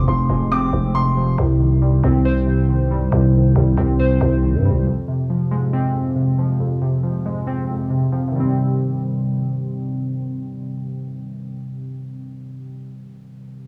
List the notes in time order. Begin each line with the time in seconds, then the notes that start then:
Already playing: F2 C3 F3 G#3 C4
0.08 F1 F3 C6
0.30 F1 G#3
0.52 C4 D6
0.73 F1 F2
0.94 C3 C6
1.17 F3
1.38 C2 C3
1.60 D#3
1.82 G3
2.04 C2 C4
2.25 C5
2.46 C3
2.69 D#3
2.91 G3
3.12 C2 C3
3.34 D#3
3.56 C2 G3
3.77 C2 C4
3.99 C5
4.21 C2 C3
4.42 D#3
4.54 G2
4.65 G3
4.70 C2
4.86 F2
5.08 C3
5.30 F3
5.51 G#3
5.73 C4
5.94 F2
6.16 C3
6.38 F3
6.60 F2
6.82 C3
7.03 F3
7.26 G#3
7.47 C4
7.69 F2
7.90 C3
8.12 F3
8.28 C3 D#3
8.36 G3 C4